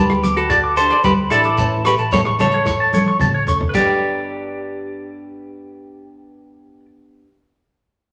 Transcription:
0.00 0.34 G4 medium
0.00 0.39 B4 medium
0.10 0.89 D2 medium
0.10 cross-stick medium
0.23 0.39 G4 medium
0.23 0.32 D6 medium
0.23 closed hi-hat soft
0.23 high conga medium
0.23 shekere medium
0.37 0.74 F#4 medium
0.37 0.76 A4 medium
0.37 closed hi-hat soft
0.50 0.58 D5 medium
0.50 kick medium
0.50 cross-stick medium
0.50 closed hi-hat soft
0.50 muted conga soft
0.50 shekere medium
0.64 0.72 D6 medium
0.77 0.95 D4 soft
0.77 0.93 G4 medium
0.77 1.02 A4 medium
0.77 1.04 C5 medium
0.77 0.85 A5 medium
0.77 closed hi-hat soft
0.77 shekere medium
0.90 0.99 D5 medium
0.90 cross-stick medium
0.90 closed hi-hat soft
1.04 1.27 D2 medium
1.04 1.12 G4 medium
1.04 1.12 B4 medium
1.04 kick medium
1.04 closed hi-hat medium
1.04 high conga medium
1.04 shekere medium
1.30 1.53 A1 medium
1.30 1.49 D4 soft
1.30 1.81 E4 medium
1.30 1.47 G4 soft
1.30 1.87 A4 medium
1.30 1.40 D5 medium
1.30 cross-stick medium
1.30 closed hi-hat soft
1.30 muted conga soft
1.30 shekere medium
1.44 1.53 D6 medium
1.44 closed hi-hat soft
1.57 1.92 A1 medium
1.57 1.75 E3 medium
1.57 1.75 A3 medium
1.57 1.75 C#4 medium
1.57 1.76 A4 medium
1.57 1.67 A5 medium
1.57 kick medium
1.57 closed hi-hat soft
1.57 muted conga soft
1.57 shekere medium
1.84 2.02 A3 soft
1.84 2.02 C#4 soft
1.84 1.95 G4 medium
1.84 2.01 A4 soft
1.84 1.94 B4 medium
1.84 1.94 C#6 medium
1.84 cross-stick medium
1.84 closed hi-hat soft
1.84 muted conga soft
1.84 shekere medium
1.98 2.21 A1 medium
1.98 2.07 A5 medium
1.98 closed hi-hat soft
2.11 2.21 A4 medium
2.11 2.20 C#5 medium
2.11 kick medium
2.11 closed hi-hat soft
2.11 high conga loud
2.11 shekere medium
2.25 3.05 A1 medium
2.25 2.34 C#6 medium
2.25 cross-stick medium
2.38 2.57 A3 soft
2.38 2.56 C#4 soft
2.38 2.55 A4 soft
2.38 3.45 A4 medium
2.38 3.45 C#5 medium
2.38 2.48 A5 medium
2.38 closed hi-hat soft
2.38 high conga medium
2.38 low conga medium
2.38 shekere medium
2.52 2.62 C#5 medium
2.52 closed hi-hat soft
2.66 2.75 C#6 medium
2.66 kick medium
2.66 snare soft
2.66 muted conga soft
2.66 shekere medium
2.80 2.88 A5 medium
2.92 3.11 A3 soft
2.92 3.10 C#4 soft
2.92 3.09 A4 soft
2.92 3.02 C#5 medium
2.92 high tom soft
2.92 high conga medium
2.92 shekere medium
3.06 3.16 C#6 medium
3.06 high tom soft
3.20 3.43 A1 medium
3.20 3.29 A5 medium
3.20 kick medium
3.20 mid tom medium
3.20 high conga medium
3.20 low conga medium
3.20 shekere medium
3.34 3.43 C#5 medium
3.47 3.70 D2 medium
3.47 3.65 A3 soft
3.47 3.64 C#4 soft
3.47 3.64 A4 soft
3.47 3.56 C#6 medium
3.47 floor tom medium
3.47 muted conga soft
3.47 shekere medium
3.61 floor tom medium
3.69 7.21 B3 medium
3.69 6.80 B4 medium
3.74 6.85 G1 medium
3.74 7.27 D4 medium
3.74 6.85 G4 medium
3.74 6.86 D5 medium
3.74 kick medium
3.74 crash medium
3.74 muted conga medium
3.74 shekere medium
3.81 7.32 G4 medium
3.81 muted clean electric guitar stroke medium

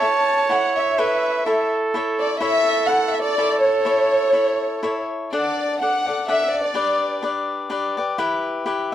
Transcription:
0.00 0.48 E4 soft
0.00 0.50 A4 soft
0.00 1.01 C#5 loud
0.00 0.50 C#5 soft
0.00 0.51 E5 soft
0.00 0.50 A5 medium
0.49 0.97 E4 medium
0.49 0.98 A4 medium
0.49 0.97 C#5 soft
0.49 0.98 E5 medium
0.49 0.76 F#5 medium
0.76 1.68 E5 medium
0.98 1.45 E4 medium
0.98 1.47 A4 medium
0.98 1.46 B4 medium
0.98 1.46 C#5 medium
0.98 1.46 E5 medium
1.46 1.93 E4 medium
1.46 2.38 A4 medium
1.46 1.95 A4 medium
1.46 1.94 C#5 medium
1.46 1.95 E5 medium
1.94 2.39 E4 medium
1.94 2.41 A4 medium
1.94 2.40 C#5 medium
1.94 2.41 E5 medium
2.19 2.40 D5 medium
2.39 2.87 E4 medium
2.39 2.89 A4 medium
2.39 2.88 C#5 medium
2.39 2.84 E5 loud
2.39 2.89 E5 medium
2.44 3.34 A4 medium
2.87 3.36 E4 medium
2.87 3.38 A4 soft
2.87 3.37 C#5 soft
2.87 3.37 E5 soft
2.87 3.14 F#5 medium
3.11 3.24 E5 medium
3.23 3.59 D5 medium
3.38 3.84 E4 medium
3.38 5.06 A4 medium
3.38 3.85 A4 medium
3.38 3.85 C#5 soft
3.38 3.85 E5 medium
3.60 5.04 C#5 medium
3.85 4.32 E4 medium
3.85 4.33 A4 medium
3.85 4.33 C#5 medium
3.85 4.33 E5 medium
4.33 4.82 E4 medium
4.33 4.82 A4 soft
4.33 4.82 C#5 medium
4.33 4.83 E5 medium
4.83 5.32 E4 medium
4.83 5.32 A4 medium
4.83 5.32 C#5 medium
4.83 5.32 E5 medium
5.33 5.81 D4 medium
5.33 5.80 A4 medium
5.33 5.82 D5 medium
5.33 5.78 D5 medium
5.33 5.81 F#5 medium
5.81 6.07 D4 soft
5.81 6.07 A4 soft
5.81 6.06 D5 soft
5.81 6.28 F#5 medium
5.81 6.05 F#5 soft
6.06 6.27 A4 soft
6.06 6.28 D5 soft
6.06 6.28 F#5 soft
6.28 6.73 D4 medium
6.28 6.74 A4 medium
6.28 6.74 D5 medium
6.28 6.53 E5 medium
6.28 6.75 F#5 medium
6.57 7.24 D5 medium
6.74 7.21 D4 medium
6.74 7.22 G4 medium
6.74 7.23 B4 medium
6.74 7.23 D5 medium
7.22 7.68 D4 medium
7.22 7.69 G4 soft
7.22 7.69 B4 soft
7.22 7.70 D5 medium
7.70 7.96 D4 medium
7.70 7.96 G4 medium
7.70 7.96 B4 medium
7.70 7.96 D5 medium
7.97 8.17 G4 soft
7.97 8.18 B4 soft
7.97 8.19 D5 medium
8.18 8.64 E4 medium
8.18 8.65 G4 medium
8.18 8.65 B4 medium
8.18 8.66 E5 medium
8.66 8.92 E4 soft
8.66 8.92 G4 medium
8.66 8.91 B4 medium
8.66 8.91 E5 medium

